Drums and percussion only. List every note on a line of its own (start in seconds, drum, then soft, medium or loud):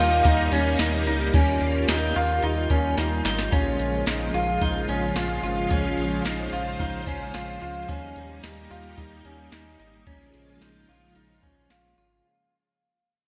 0.25 kick medium
0.25 closed hi-hat medium
0.52 closed hi-hat medium
0.79 snare loud
0.79 closed hi-hat medium
1.07 closed hi-hat soft
1.34 kick loud
1.34 closed hi-hat medium
1.61 closed hi-hat medium
1.88 snare loud
1.88 closed hi-hat medium
2.16 closed hi-hat soft
2.42 closed hi-hat medium
2.70 kick medium
2.70 closed hi-hat medium
2.98 snare medium
2.98 closed hi-hat medium
3.25 snare medium
3.25 closed hi-hat soft
3.39 snare medium
3.52 kick medium
3.52 closed hi-hat medium
3.79 closed hi-hat medium
4.06 snare loud
4.06 closed hi-hat medium
4.34 closed hi-hat soft
4.61 kick medium
4.61 closed hi-hat medium
4.89 closed hi-hat medium
5.16 snare loud
5.16 closed hi-hat medium
5.43 closed hi-hat soft
5.71 kick loud
5.71 closed hi-hat medium
5.98 closed hi-hat medium
6.25 snare medium
6.25 closed hi-hat medium
6.53 closed hi-hat soft
6.79 kick medium
6.79 closed hi-hat medium
7.07 kick medium
7.07 closed hi-hat medium
7.34 snare loud
7.34 closed hi-hat medium
7.61 closed hi-hat soft
7.89 kick medium
7.89 closed hi-hat medium
8.16 closed hi-hat medium
8.43 snare medium
8.43 closed hi-hat medium
8.71 closed hi-hat soft
8.98 kick medium
8.98 closed hi-hat medium
9.25 closed hi-hat soft
9.52 snare loud
9.52 closed hi-hat medium
9.80 closed hi-hat soft
10.07 kick loud
10.07 closed hi-hat medium
10.34 closed hi-hat soft
10.61 snare loud
10.61 closed hi-hat medium
10.89 closed hi-hat soft
11.16 closed hi-hat medium
11.43 kick medium
11.43 closed hi-hat soft
11.70 snare loud
11.70 closed hi-hat medium
11.98 closed hi-hat soft